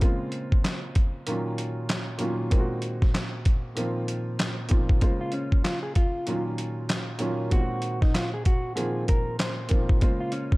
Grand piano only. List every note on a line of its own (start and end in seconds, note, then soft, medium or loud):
0.00 0.91 C#3 medium
0.00 0.91 G#3 medium
0.00 0.92 A#3 medium
0.00 0.92 C4 medium
0.00 0.92 F4 medium
1.27 1.94 A#2 medium
1.27 1.95 D#3 medium
1.27 1.95 F#3 medium
1.27 1.95 A#3 medium
1.27 1.95 C#4 medium
1.27 1.96 F4 medium
2.18 2.43 A#2 medium
2.18 2.44 D#3 medium
2.18 2.44 F#3 medium
2.18 2.44 A#3 medium
2.18 2.45 C#4 medium
2.18 2.45 F4 medium
2.50 3.41 A#2 medium
2.50 3.41 D#3 medium
2.50 3.42 G#3 medium
2.50 3.42 A#3 medium
2.50 3.42 C4 medium
2.50 2.60 F4 medium
2.60 3.46 F#4 medium
3.76 4.44 A#2 medium
3.76 4.44 D#3 medium
3.76 4.44 F3 medium
3.76 4.45 A#3 medium
3.76 4.45 C4 medium
3.76 4.45 F4 medium
4.69 4.94 A#2 medium
4.69 4.94 D#3 medium
4.69 4.94 F3 medium
4.69 4.94 A#3 medium
4.69 4.95 C4 medium
4.69 4.95 F4 medium
5.00 5.91 C#3 medium
5.00 5.91 G#3 medium
5.00 5.92 A#3 medium
5.00 5.93 F4 medium
5.00 5.92 C5 medium
6.27 6.94 A#2 medium
6.27 6.95 D#3 medium
6.27 6.95 F#3 medium
6.27 6.95 A#3 medium
6.27 6.96 C#4 medium
6.27 6.96 F4 medium
7.18 7.43 A#2 medium
7.18 7.44 D#3 medium
7.18 7.44 F#3 medium
7.18 7.44 A#3 medium
7.18 7.45 C#4 medium
7.18 7.45 F4 medium
7.50 8.41 A#2 medium
7.50 8.41 D#3 medium
7.50 8.42 G#3 medium
7.50 8.42 A#3 medium
7.50 8.42 C4 medium
7.50 7.60 F4 medium
7.60 8.46 F#4 medium
8.75 9.44 A#2 medium
8.75 9.44 D#3 medium
8.75 9.44 F3 medium
8.75 9.45 A#3 medium
8.75 9.45 C4 medium
8.75 9.45 F4 medium
9.69 9.94 A#2 medium
9.69 9.94 D#3 medium
9.69 9.94 F3 medium
9.69 9.94 A#3 medium
9.69 9.95 C4 medium
9.69 9.95 F4 medium
10.00 10.57 C#3 medium
10.00 10.57 G#3 medium
10.00 10.57 A#3 medium
10.00 10.57 F4 medium
10.00 10.57 C5 medium